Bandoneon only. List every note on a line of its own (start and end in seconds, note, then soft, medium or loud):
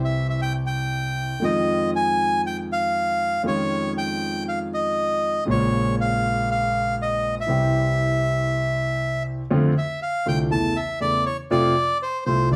0.05 0.27 E5 medium
0.30 0.41 E5 medium
0.42 0.53 G5 loud
0.66 1.45 G5 medium
1.44 1.91 D#5 medium
1.96 2.42 G#5 loud
2.47 2.57 G5 medium
2.72 3.42 F5 medium
3.47 3.93 C#5 medium
3.98 4.44 G5 loud
4.49 4.59 F5 medium
4.74 5.44 D#5 medium
5.51 5.96 C#5 medium
6.01 6.50 F5 loud
6.51 6.96 F5 loud
7.02 7.35 D#5 medium
7.41 9.23 E5 medium
9.78 10.00 E5 medium
10.03 10.27 F5 medium
10.28 10.39 G5 loud
10.52 10.77 A5 loud
10.76 11.00 E5 medium
11.01 11.25 D5 medium
11.26 11.37 C#5 medium
11.51 11.98 D5 loud
12.03 12.24 C5 medium
12.26 12.49 C5 medium
12.52 12.56 D5 loud